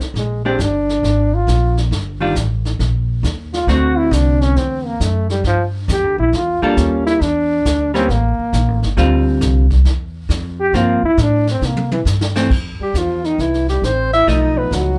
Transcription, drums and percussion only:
0.00 snare soft
0.15 brush sweep medium
0.15 snare soft
0.60 snare medium
0.60 hi-hat pedal soft
0.89 snare soft
1.04 brush sweep soft
1.04 snare soft
1.48 snare medium
1.48 hi-hat pedal medium
1.77 snare soft
1.92 brush sweep medium
1.92 snare medium
2.36 snare medium
2.36 hi-hat pedal medium
2.65 snare soft
2.80 brush sweep soft
2.80 snare soft
3.24 snare medium
3.24 hi-hat pedal medium
3.53 snare soft
3.68 brush sweep soft
3.68 snare medium
4.12 snare medium
4.12 hi-hat pedal medium
4.41 snare soft
4.56 brush sweep soft
4.56 snare soft
5.01 snare medium
5.01 hi-hat pedal medium
5.30 snare soft
5.44 brush sweep soft
5.44 snare soft
5.89 snare medium
5.89 hi-hat pedal medium
6.33 brush sweep soft
6.33 snare soft
6.77 snare medium
6.77 hi-hat pedal medium
7.07 snare soft
7.21 brush sweep medium
7.21 snare medium
7.65 snare medium
7.65 hi-hat pedal medium
7.95 snare soft
8.10 brush sweep soft
8.10 snare soft
8.53 snare medium
8.53 hi-hat pedal medium
8.83 snare soft
8.97 brush sweep medium
8.97 snare soft
9.41 snare medium
9.41 hi-hat pedal medium
9.70 kick medium
9.70 snare soft
9.85 brush sweep medium
9.85 snare soft
10.30 snare medium
10.30 hi-hat pedal medium
10.74 brush sweep soft
10.74 snare medium
11.18 snare medium
11.18 hi-hat pedal medium
11.47 snare soft
11.62 snare medium
11.77 high tom medium
11.92 high tom medium
12.06 snare medium
12.06 hi-hat pedal medium
12.21 snare medium
12.36 snare medium
12.50 brush sweep medium
12.50 kick medium
12.50 snare soft
12.50 crash medium
12.95 snare medium
12.95 hi-hat pedal medium
13.24 snare soft
13.39 brush sweep soft
13.39 snare soft
13.54 snare soft
13.68 snare soft
13.83 snare medium
13.83 hi-hat pedal medium
14.13 snare soft
14.28 brush sweep soft
14.28 snare soft
14.72 snare medium
14.72 hi-hat pedal medium

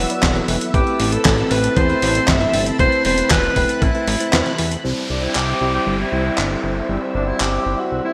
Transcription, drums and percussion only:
0.10 closed hi-hat medium
0.23 kick loud
0.23 snare loud
0.23 clap loud
0.23 closed hi-hat medium
0.36 closed hi-hat soft
0.48 open hi-hat loud
0.61 closed hi-hat medium
0.74 kick loud
0.74 closed hi-hat medium
0.87 closed hi-hat soft
1.00 open hi-hat loud
1.12 closed hi-hat medium
1.25 kick loud
1.25 snare loud
1.25 clap loud
1.25 closed hi-hat medium
1.38 closed hi-hat soft
1.51 open hi-hat loud
1.64 closed hi-hat medium
1.76 kick loud
1.76 closed hi-hat medium
1.90 closed hi-hat soft
2.02 open hi-hat loud
2.15 closed hi-hat medium
2.28 kick loud
2.28 snare loud
2.28 clap loud
2.28 closed hi-hat medium
2.41 closed hi-hat soft
2.54 open hi-hat loud
2.66 closed hi-hat medium
2.79 kick loud
2.79 closed hi-hat medium
2.92 closed hi-hat soft
3.05 open hi-hat loud
3.18 closed hi-hat medium
3.30 kick loud
3.30 snare loud
3.30 clap loud
3.30 closed hi-hat medium
3.43 closed hi-hat soft
3.56 kick medium
3.56 open hi-hat loud
3.69 closed hi-hat medium
3.82 kick loud
3.82 closed hi-hat medium
3.95 closed hi-hat soft
4.08 open hi-hat loud
4.20 closed hi-hat medium
4.33 snare loud
4.33 clap loud
4.33 closed hi-hat medium
4.46 snare soft
4.46 closed hi-hat soft
4.58 open hi-hat loud
4.72 closed hi-hat medium
5.35 clap loud
6.38 clap loud
7.40 clap loud

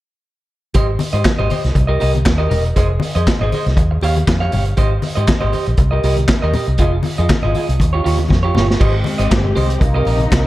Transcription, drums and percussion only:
0.74 kick loud
0.74 closed hi-hat medium
0.74 muted conga soft
0.99 open hi-hat medium
0.99 muted conga soft
0.99 high conga medium
1.12 closed hi-hat soft
1.24 kick loud
1.24 snare loud
1.24 clap medium
1.24 closed hi-hat medium
1.24 high conga medium
1.39 low conga medium
1.50 open hi-hat medium
1.50 muted conga soft
1.50 high conga medium
1.64 snare soft
1.64 closed hi-hat soft
1.75 kick loud
1.75 closed hi-hat medium
2.00 open hi-hat medium
2.00 muted conga soft
2.14 closed hi-hat soft
2.14 high conga medium
2.25 kick loud
2.25 snare loud
2.25 clap medium
2.25 closed hi-hat medium
2.25 high conga medium
2.51 open hi-hat medium
2.51 low conga medium
2.65 closed hi-hat soft
2.76 kick loud
2.76 closed hi-hat medium
3.00 open hi-hat medium
3.00 muted conga soft
3.00 high conga medium
3.15 closed hi-hat soft
3.27 kick medium
3.27 snare loud
3.27 clap medium
3.27 closed hi-hat medium
3.27 muted conga soft
3.27 high conga medium
3.39 low conga medium
3.52 open hi-hat medium
3.52 muted conga soft
3.52 high conga medium
3.66 snare soft
3.66 closed hi-hat soft
3.77 kick loud
3.77 closed hi-hat medium
4.01 open hi-hat medium
4.01 muted conga soft
4.16 closed hi-hat soft
4.16 high conga medium
4.28 kick loud
4.28 snare loud
4.28 clap medium
4.28 closed hi-hat medium
4.28 muted conga soft
4.28 high conga medium
4.52 open hi-hat medium
4.52 low conga medium
4.65 closed hi-hat soft
4.77 kick loud
4.77 closed hi-hat medium
4.77 muted conga soft
5.02 open hi-hat medium
5.02 high conga medium
5.16 closed hi-hat soft
5.27 kick loud
5.27 snare loud
5.27 clap medium
5.27 closed hi-hat medium
5.27 high conga medium
5.41 low conga medium
5.53 open hi-hat medium
5.53 high conga medium
5.66 closed hi-hat soft
5.77 kick loud
5.77 closed hi-hat medium
6.03 open hi-hat medium
6.16 closed hi-hat soft
6.16 high conga medium
6.28 kick loud
6.28 snare loud
6.28 clap medium
6.28 closed hi-hat medium
6.28 high conga medium
6.53 open hi-hat medium
6.53 muted conga soft
6.53 low conga medium
6.67 closed hi-hat soft
6.78 kick loud
6.78 closed hi-hat medium
6.78 muted conga soft
7.03 open hi-hat medium
7.03 muted conga soft
7.03 high conga medium
7.17 closed hi-hat soft
7.29 kick loud
7.29 snare loud
7.29 clap medium
7.29 closed hi-hat medium
7.29 muted conga soft
7.29 high conga medium
7.42 low conga medium
7.55 open hi-hat medium
7.55 muted conga soft
7.55 high conga medium
7.69 closed hi-hat soft
7.80 kick loud
7.80 closed hi-hat medium
7.80 muted conga soft
8.06 open hi-hat medium
8.18 closed hi-hat soft
8.18 high conga medium
8.29 kick loud
8.29 snare medium
8.29 muted conga soft
8.29 high conga medium
8.55 snare medium
8.55 low conga medium
8.71 snare medium
8.81 kick loud
8.81 crash medium
9.04 open hi-hat medium
9.04 high conga medium
9.19 closed hi-hat soft
9.31 kick loud
9.31 snare loud
9.31 clap medium
9.31 closed hi-hat medium
9.31 muted conga soft
9.31 high conga medium
9.43 low conga medium
9.56 open hi-hat medium
9.56 high conga medium
9.70 closed hi-hat soft
9.81 kick loud
9.81 closed hi-hat medium
10.05 open hi-hat medium
10.05 muted conga soft
10.20 closed hi-hat soft
10.20 high conga medium
10.30 kick loud
10.30 snare loud
10.30 clap medium
10.30 closed hi-hat medium
10.30 high conga medium

